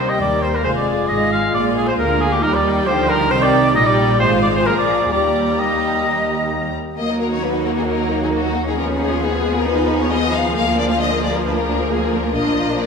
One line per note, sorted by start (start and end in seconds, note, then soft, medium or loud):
0.00 0.17 C2 soft
0.00 0.17 C3 soft
0.00 0.61 G3 soft
0.00 0.60 A#3 soft
0.00 0.17 D#4 soft
0.00 0.60 G4 soft
0.00 0.11 C5 medium
0.00 0.60 G5 soft
0.08 0.21 D#5 medium
0.08 0.20 D#5 medium
0.20 0.65 D#2 soft
0.20 0.65 A#4 soft
0.20 0.42 D5 medium
0.20 0.44 D5 medium
0.42 0.56 C5 medium
0.42 0.47 C5 soft
0.54 0.59 A#4 soft
0.54 0.63 A#4 medium
0.64 1.09 F1 soft
0.64 1.09 F2 soft
0.64 1.98 G#3 soft
0.64 2.43 G#3 soft
0.64 2.43 F4 soft
0.64 1.54 G#4 soft
0.64 0.69 C5 medium
0.64 0.76 C5 medium
0.64 1.07 F5 soft
0.76 1.11 D5 medium
0.76 1.10 D5 medium
1.08 1.54 G#1 soft
1.08 1.54 G#2 soft
1.08 1.31 D#5 medium
1.08 1.52 F5 soft
1.32 1.54 F5 medium
1.32 1.38 F5 medium
1.53 1.97 A#1 soft
1.53 1.97 A#2 medium
1.53 2.41 F4 soft
1.53 1.75 D5 medium
1.53 1.64 D5 medium
1.53 1.97 F5 soft
1.76 1.88 G#4 medium
1.76 1.87 G#4 medium
1.86 1.97 C5 medium
1.86 1.93 C5 medium
1.98 2.42 D2 medium
1.98 2.42 D3 medium
1.98 2.43 A#3 medium
1.98 2.19 A#4 medium
1.98 2.22 A#4 medium
1.98 2.42 F5 soft
2.20 2.31 G#4 medium
2.20 2.34 G#4 medium
2.32 2.44 G4 medium
2.42 2.87 D#2 medium
2.42 2.87 D#3 medium
2.42 4.21 G3 medium
2.42 2.87 G3 medium
2.42 4.21 D#4 medium
2.42 2.87 D#4 medium
2.42 2.55 A#4 medium
2.42 3.29 G5 medium
2.54 2.88 D5 medium
2.86 3.30 D2 medium
2.86 3.31 D3 medium
2.86 3.31 F3 medium
2.86 3.31 G4 medium
2.86 3.10 C5 medium
2.86 3.11 C5 medium
3.09 3.30 A#4 medium
3.09 3.33 A#4 medium
3.30 3.76 C2 medium
3.30 3.76 C3 medium
3.30 3.76 D#3 medium
3.30 3.75 G4 medium
3.30 3.44 C5 medium
3.30 3.43 C5 medium
3.30 3.74 G5 medium
3.42 3.77 D5 medium
3.42 3.75 D5 medium
3.75 4.21 A#1 medium
3.75 4.21 A#2 medium
3.75 4.20 G3 medium
3.75 4.21 D#4 medium
3.75 3.88 D#5 medium
3.75 4.19 G5 medium
3.86 4.19 D5 medium
4.20 4.67 G#1 medium
4.20 4.66 G#2 medium
4.20 4.67 G#3 medium
4.20 4.65 F4 medium
4.20 5.11 F4 medium
4.20 4.30 C5 medium
4.20 4.42 C5 medium
4.20 4.66 F5 medium
4.42 4.48 D5 medium
4.42 4.54 D5 medium
4.55 4.67 C5 medium
4.55 4.68 C5 medium
4.65 5.12 A#1 medium
4.65 5.12 A#2 medium
4.65 5.12 F3 medium
4.65 6.71 A#3 medium
4.65 5.12 G#4 medium
4.65 4.76 A#4 medium
4.65 4.77 A#4 medium
4.65 5.10 A#5 medium
4.77 5.11 D5 medium
5.11 6.74 D#2 medium
5.11 6.74 G3 soft
5.11 6.77 G4 soft
5.11 6.76 G4 soft
5.11 5.61 D5 medium
5.11 5.38 D5 medium
5.11 6.74 A#5 soft
5.58 6.75 D#5 soft
5.58 6.75 D#5 medium
6.98 10.52 D#2 soft
6.98 8.75 F#3 soft
6.98 7.40 A#3 soft
6.98 8.75 A#3 soft
6.98 7.09 A#3 soft
6.98 8.75 F#4 soft
6.98 7.19 D#5 medium
7.10 7.21 D#4 soft
7.20 7.32 A#3 soft
7.20 7.31 A#4 medium
7.32 7.43 D#4 soft
7.32 7.43 C#5 medium
7.43 7.54 A#3 soft
7.43 8.76 D#4 medium
7.43 7.66 B4 medium
7.54 7.65 D#4 soft
7.66 7.77 A#3 soft
7.66 7.70 A#4 medium
7.77 7.89 D#4 soft
7.77 7.82 G#4 medium
7.88 7.98 A#3 soft
7.88 8.21 A#4 medium
7.99 8.11 D#4 soft
8.12 8.22 A#3 soft
8.22 8.34 D#4 soft
8.22 8.27 G#4 medium
8.32 8.44 A#3 soft
8.32 8.66 F#4 medium
8.45 8.56 D#4 soft
8.56 8.67 A#3 soft
8.67 8.78 D#4 soft
8.67 8.78 G#4 medium
8.77 12.32 F3 medium
8.77 8.88 G#3 soft
8.77 10.53 B3 soft
8.77 9.22 C#4 medium
8.77 12.32 G#4 medium
8.77 8.85 A#4 medium
8.88 9.00 B3 soft
8.99 9.11 D#4 soft
8.99 9.22 G#4 medium
9.11 9.22 F4 soft
9.22 9.67 B3 medium
9.22 9.34 D#4 medium
9.22 9.56 G#4 medium
9.32 9.44 B3 soft
9.44 9.56 G#3 medium
9.55 9.67 B3 soft
9.55 9.68 A#4 medium
9.66 9.77 D#4 soft
9.66 10.12 D#4 medium
9.66 10.01 B4 medium
9.78 9.89 F4 soft
9.89 10.00 D#4 soft
10.00 10.12 B3 soft
10.00 10.12 C#5 medium
10.11 10.23 G#3 medium
10.11 10.55 B3 medium
10.11 10.34 D#5 medium
10.22 10.33 B3 soft
10.33 10.45 D#4 soft
10.33 10.55 F5 medium
10.45 10.56 F4 medium
10.55 12.33 D2 medium
10.55 10.66 G#3 medium
10.55 11.00 A#3 medium
10.55 12.86 A#3 medium
10.55 10.78 F5 medium
10.67 10.78 A#3 soft
10.78 10.90 D4 soft
10.78 10.89 D5 medium
10.90 11.01 F4 soft
10.90 11.01 F5 medium
11.00 12.34 A#3 medium
11.00 11.12 D4 medium
11.00 11.22 D#5 medium
11.12 11.23 A#3 soft
11.23 11.34 G#3 soft
11.23 11.34 D5 medium
11.34 11.46 A#3 soft
11.34 11.45 A#4 medium
11.45 11.56 D4 soft
11.45 11.56 B4 medium
11.57 11.69 F4 soft
11.57 11.90 A#4 medium
11.68 11.80 D4 soft
11.80 11.91 A#3 soft
11.90 12.02 G#3 soft
11.90 12.14 G#4 medium
12.02 12.14 A#3 soft
12.13 12.26 D4 soft
12.13 12.36 A#4 medium
12.25 12.36 F4 soft
12.35 12.86 A#1 soft
12.35 12.86 F3 soft
12.35 12.47 A#3 soft
12.35 12.86 D4 medium
12.35 12.86 A#4 soft
12.35 12.80 D#5 medium
12.47 12.59 D4 soft
12.58 12.70 F4 soft
12.69 12.81 D4 soft
12.80 12.86 A#3 soft
12.80 12.86 D5 medium